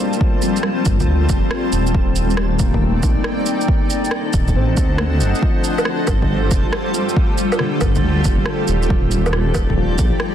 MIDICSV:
0, 0, Header, 1, 6, 480
1, 0, Start_track
1, 0, Key_signature, -2, "minor"
1, 0, Tempo, 434783
1, 226, Time_signature, 4, 2, 24, 8
1, 11423, End_track
2, 0, Start_track
2, 0, Title_t, "Ambient pad"
2, 0, Program_c, 0, 92
2, 0, Note_on_c, 0, 55, 75
2, 0, Note_on_c, 0, 60, 66
2, 0, Note_on_c, 0, 65, 66
2, 0, Note_on_c, 0, 72, 81
2, 0, Note_on_c, 0, 81, 66
2, 2105, Note_off_c, 0, 55, 0
2, 2105, Note_off_c, 0, 81, 0
2, 2108, Note_off_c, 0, 65, 0
2, 2108, Note_off_c, 0, 72, 0
2, 2150, Note_on_c, 0, 79, 83
2, 2153, Note_on_c, 0, 74, 68
2, 2155, Note_on_c, 0, 63, 71
2, 4022, Note_off_c, 0, 60, 0
2, 4049, Note_off_c, 0, 79, 0
2, 4050, Note_off_c, 0, 74, 0
2, 4051, Note_off_c, 0, 63, 0
2, 4060, Note_on_c, 0, 72, 66
2, 4063, Note_on_c, 0, 75, 69
2, 4063, Note_on_c, 0, 78, 69
2, 4065, Note_on_c, 0, 62, 73
2, 4066, Note_on_c, 0, 81, 83
2, 5965, Note_off_c, 0, 75, 0
2, 5965, Note_off_c, 0, 78, 0
2, 5966, Note_off_c, 0, 62, 0
2, 5967, Note_off_c, 0, 81, 0
2, 5976, Note_on_c, 0, 55, 74
2, 5976, Note_on_c, 0, 67, 66
2, 5977, Note_on_c, 0, 65, 67
2, 5979, Note_on_c, 0, 69, 66
2, 9779, Note_off_c, 0, 72, 0
2, 9783, Note_off_c, 0, 55, 0
2, 9783, Note_off_c, 0, 65, 0
2, 9784, Note_off_c, 0, 69, 0
2, 9824, Note_on_c, 0, 63, 74
2, 9826, Note_on_c, 0, 79, 83
2, 9833, Note_on_c, 0, 74, 67
2, 11423, Note_off_c, 0, 63, 0
2, 11423, Note_off_c, 0, 67, 0
2, 11423, Note_off_c, 0, 74, 0
2, 11423, Note_off_c, 0, 79, 0
2, 11423, End_track
3, 0, Start_track
3, 0, Title_t, "Synth texture"
3, 0, Program_c, 1, 99
3, 0, Note_on_c, 1, 57, 79
3, 0, Note_on_c, 1, 69, 82
3, 11423, Note_off_c, 1, 57, 0
3, 11423, Note_off_c, 1, 69, 0
3, 11423, End_track
4, 0, Start_track
4, 0, Title_t, "Felt piano"
4, 0, Program_c, 2, 0
4, 0, Control_c, 2, 64, 127
4, 0, Note_on_c, 2, 55, 51
4, 0, Note_on_c, 2, 58, 51
4, 0, Note_on_c, 2, 60, 51
4, 0, Note_on_c, 2, 62, 52
4, 0, Note_on_c, 2, 65, 53
4, 0, Note_on_c, 2, 69, 50
4, 0, Note_on_c, 2, 72, 50
4, 467, Note_on_c, 2, 53, 57
4, 557, Note_off_c, 2, 69, 0
4, 690, Note_off_c, 2, 72, 0
4, 797, Note_off_c, 2, 65, 0
4, 1358, Note_off_c, 2, 55, 0
4, 1518, Note_off_c, 2, 62, 0
4, 1522, Note_off_c, 2, 58, 0
4, 1650, Note_off_c, 2, 60, 0
4, 2159, Control_c, 2, 64, 0
4, 2315, Note_off_c, 2, 53, 0
4, 2366, Control_c, 2, 64, 127
4, 2630, Note_on_c, 2, 55, 67
4, 2842, Note_on_c, 2, 58, 53
4, 3352, Note_on_c, 2, 63, 50
4, 4079, Control_c, 2, 64, 0
4, 4264, Note_off_c, 2, 55, 0
4, 4265, Note_off_c, 2, 63, 0
4, 4303, Control_c, 2, 64, 127
4, 4450, Note_off_c, 2, 58, 0
4, 5030, Note_on_c, 2, 60, 70
4, 5511, Note_on_c, 2, 57, 52
4, 5975, Note_on_c, 2, 53, 50
4, 5999, Control_c, 2, 64, 0
4, 6184, Note_off_c, 2, 57, 0
4, 6184, Note_off_c, 2, 60, 0
4, 6212, Control_c, 2, 64, 127
4, 7829, Note_off_c, 2, 53, 0
4, 8388, Note_on_c, 2, 50, 61
4, 9838, Control_c, 2, 64, 0
4, 10017, Control_c, 2, 64, 127
4, 10023, Note_off_c, 2, 50, 0
4, 10783, Note_on_c, 2, 53, 52
4, 11423, Note_off_c, 2, 53, 0
4, 11423, End_track
5, 0, Start_track
5, 0, Title_t, "Detuned saw bass"
5, 0, Program_c, 3, 39
5, 951, Note_on_c, 3, 31, 97
5, 1176, Note_off_c, 3, 31, 0
5, 1186, Note_on_c, 3, 38, 101
5, 1413, Note_off_c, 3, 38, 0
5, 1429, Note_on_c, 3, 29, 100
5, 1575, Note_off_c, 3, 29, 0
5, 1906, Note_on_c, 3, 27, 94
5, 2856, Note_off_c, 3, 27, 0
5, 2866, Note_on_c, 3, 27, 93
5, 3336, Note_off_c, 3, 27, 0
5, 3345, Note_on_c, 3, 34, 78
5, 3493, Note_off_c, 3, 34, 0
5, 4789, Note_on_c, 3, 26, 94
5, 5022, Note_on_c, 3, 33, 89
5, 5039, Note_off_c, 3, 26, 0
5, 5251, Note_off_c, 3, 33, 0
5, 5269, Note_on_c, 3, 38, 91
5, 5744, Note_on_c, 3, 30, 82
5, 5760, Note_off_c, 3, 38, 0
5, 5893, Note_off_c, 3, 30, 0
5, 6712, Note_on_c, 3, 31, 96
5, 7179, Note_off_c, 3, 31, 0
5, 7192, Note_on_c, 3, 29, 76
5, 7337, Note_off_c, 3, 29, 0
5, 8629, Note_on_c, 3, 31, 98
5, 8855, Note_off_c, 3, 31, 0
5, 8872, Note_on_c, 3, 38, 99
5, 9096, Note_off_c, 3, 38, 0
5, 9108, Note_on_c, 3, 29, 99
5, 9255, Note_off_c, 3, 29, 0
5, 9588, Note_on_c, 3, 27, 96
5, 10537, Note_off_c, 3, 27, 0
5, 10547, Note_on_c, 3, 27, 97
5, 11016, Note_off_c, 3, 27, 0
5, 11028, Note_on_c, 3, 34, 78
5, 11174, Note_off_c, 3, 34, 0
5, 11423, End_track
6, 0, Start_track
6, 0, Title_t, "Drums"
6, 143, Note_on_c, 9, 82, 31
6, 230, Note_on_c, 9, 36, 116
6, 253, Note_off_c, 9, 82, 0
6, 340, Note_off_c, 9, 36, 0
6, 461, Note_on_c, 9, 82, 55
6, 572, Note_off_c, 9, 82, 0
6, 621, Note_on_c, 9, 82, 31
6, 697, Note_on_c, 9, 37, 96
6, 732, Note_off_c, 9, 82, 0
6, 807, Note_off_c, 9, 37, 0
6, 942, Note_on_c, 9, 82, 54
6, 950, Note_on_c, 9, 36, 105
6, 1052, Note_off_c, 9, 82, 0
6, 1060, Note_off_c, 9, 36, 0
6, 1103, Note_on_c, 9, 82, 31
6, 1110, Note_on_c, 9, 36, 58
6, 1213, Note_off_c, 9, 82, 0
6, 1221, Note_off_c, 9, 36, 0
6, 1423, Note_on_c, 9, 82, 57
6, 1429, Note_on_c, 9, 36, 102
6, 1533, Note_off_c, 9, 82, 0
6, 1539, Note_off_c, 9, 36, 0
6, 1664, Note_on_c, 9, 37, 99
6, 1774, Note_off_c, 9, 37, 0
6, 1903, Note_on_c, 9, 82, 53
6, 2013, Note_off_c, 9, 82, 0
6, 2060, Note_on_c, 9, 82, 31
6, 2147, Note_on_c, 9, 36, 117
6, 2171, Note_off_c, 9, 82, 0
6, 2258, Note_off_c, 9, 36, 0
6, 2381, Note_on_c, 9, 82, 53
6, 2491, Note_off_c, 9, 82, 0
6, 2541, Note_on_c, 9, 82, 30
6, 2618, Note_on_c, 9, 37, 99
6, 2652, Note_off_c, 9, 82, 0
6, 2729, Note_off_c, 9, 37, 0
6, 2860, Note_on_c, 9, 82, 54
6, 2866, Note_on_c, 9, 36, 101
6, 2970, Note_off_c, 9, 82, 0
6, 2976, Note_off_c, 9, 36, 0
6, 3027, Note_on_c, 9, 36, 59
6, 3138, Note_off_c, 9, 36, 0
6, 3342, Note_on_c, 9, 82, 53
6, 3347, Note_on_c, 9, 36, 101
6, 3453, Note_off_c, 9, 82, 0
6, 3457, Note_off_c, 9, 36, 0
6, 3580, Note_on_c, 9, 37, 98
6, 3690, Note_off_c, 9, 37, 0
6, 3819, Note_on_c, 9, 82, 55
6, 3930, Note_off_c, 9, 82, 0
6, 3984, Note_on_c, 9, 82, 32
6, 4067, Note_on_c, 9, 36, 115
6, 4094, Note_off_c, 9, 82, 0
6, 4177, Note_off_c, 9, 36, 0
6, 4305, Note_on_c, 9, 82, 52
6, 4416, Note_off_c, 9, 82, 0
6, 4465, Note_on_c, 9, 82, 29
6, 4539, Note_on_c, 9, 37, 99
6, 4575, Note_off_c, 9, 82, 0
6, 4650, Note_off_c, 9, 37, 0
6, 4781, Note_on_c, 9, 82, 53
6, 4788, Note_on_c, 9, 36, 103
6, 4892, Note_off_c, 9, 82, 0
6, 4899, Note_off_c, 9, 36, 0
6, 4943, Note_on_c, 9, 82, 30
6, 4949, Note_on_c, 9, 36, 57
6, 5054, Note_off_c, 9, 82, 0
6, 5059, Note_off_c, 9, 36, 0
6, 5265, Note_on_c, 9, 82, 51
6, 5269, Note_on_c, 9, 36, 101
6, 5375, Note_off_c, 9, 82, 0
6, 5379, Note_off_c, 9, 36, 0
6, 5502, Note_on_c, 9, 37, 102
6, 5612, Note_off_c, 9, 37, 0
6, 5746, Note_on_c, 9, 82, 53
6, 5856, Note_off_c, 9, 82, 0
6, 5906, Note_on_c, 9, 82, 30
6, 5990, Note_on_c, 9, 36, 108
6, 6017, Note_off_c, 9, 82, 0
6, 6100, Note_off_c, 9, 36, 0
6, 6226, Note_on_c, 9, 82, 51
6, 6337, Note_off_c, 9, 82, 0
6, 6385, Note_on_c, 9, 77, 58
6, 6385, Note_on_c, 9, 82, 29
6, 6461, Note_on_c, 9, 37, 97
6, 6495, Note_off_c, 9, 77, 0
6, 6495, Note_off_c, 9, 82, 0
6, 6572, Note_off_c, 9, 37, 0
6, 6704, Note_on_c, 9, 77, 54
6, 6704, Note_on_c, 9, 82, 51
6, 6710, Note_on_c, 9, 36, 98
6, 6815, Note_off_c, 9, 77, 0
6, 6815, Note_off_c, 9, 82, 0
6, 6821, Note_off_c, 9, 36, 0
6, 6871, Note_on_c, 9, 36, 58
6, 6981, Note_off_c, 9, 36, 0
6, 7186, Note_on_c, 9, 82, 52
6, 7191, Note_on_c, 9, 36, 97
6, 7296, Note_off_c, 9, 82, 0
6, 7301, Note_off_c, 9, 36, 0
6, 7426, Note_on_c, 9, 37, 98
6, 7536, Note_off_c, 9, 37, 0
6, 7664, Note_on_c, 9, 82, 50
6, 7774, Note_off_c, 9, 82, 0
6, 7825, Note_on_c, 9, 82, 29
6, 7910, Note_on_c, 9, 36, 109
6, 7936, Note_off_c, 9, 82, 0
6, 8021, Note_off_c, 9, 36, 0
6, 8144, Note_on_c, 9, 82, 51
6, 8254, Note_off_c, 9, 82, 0
6, 8304, Note_on_c, 9, 77, 60
6, 8304, Note_on_c, 9, 82, 28
6, 8379, Note_on_c, 9, 37, 94
6, 8414, Note_off_c, 9, 77, 0
6, 8414, Note_off_c, 9, 82, 0
6, 8490, Note_off_c, 9, 37, 0
6, 8622, Note_on_c, 9, 77, 57
6, 8622, Note_on_c, 9, 82, 49
6, 8629, Note_on_c, 9, 36, 96
6, 8732, Note_off_c, 9, 77, 0
6, 8732, Note_off_c, 9, 82, 0
6, 8740, Note_off_c, 9, 36, 0
6, 8779, Note_on_c, 9, 82, 29
6, 8790, Note_on_c, 9, 36, 55
6, 8889, Note_off_c, 9, 82, 0
6, 8900, Note_off_c, 9, 36, 0
6, 9101, Note_on_c, 9, 82, 50
6, 9110, Note_on_c, 9, 36, 97
6, 9211, Note_off_c, 9, 82, 0
6, 9220, Note_off_c, 9, 36, 0
6, 9336, Note_on_c, 9, 37, 93
6, 9446, Note_off_c, 9, 37, 0
6, 9578, Note_on_c, 9, 82, 51
6, 9688, Note_off_c, 9, 82, 0
6, 9743, Note_on_c, 9, 82, 29
6, 9828, Note_on_c, 9, 36, 107
6, 9853, Note_off_c, 9, 82, 0
6, 9939, Note_off_c, 9, 36, 0
6, 10060, Note_on_c, 9, 82, 52
6, 10170, Note_off_c, 9, 82, 0
6, 10225, Note_on_c, 9, 77, 63
6, 10225, Note_on_c, 9, 82, 30
6, 10299, Note_on_c, 9, 37, 95
6, 10335, Note_off_c, 9, 77, 0
6, 10335, Note_off_c, 9, 82, 0
6, 10410, Note_off_c, 9, 37, 0
6, 10538, Note_on_c, 9, 77, 59
6, 10538, Note_on_c, 9, 82, 52
6, 10547, Note_on_c, 9, 36, 97
6, 10648, Note_off_c, 9, 77, 0
6, 10648, Note_off_c, 9, 82, 0
6, 10657, Note_off_c, 9, 36, 0
6, 10708, Note_on_c, 9, 36, 53
6, 10818, Note_off_c, 9, 36, 0
6, 11019, Note_on_c, 9, 82, 53
6, 11028, Note_on_c, 9, 36, 94
6, 11130, Note_off_c, 9, 82, 0
6, 11138, Note_off_c, 9, 36, 0
6, 11258, Note_on_c, 9, 37, 92
6, 11369, Note_off_c, 9, 37, 0
6, 11423, End_track
0, 0, End_of_file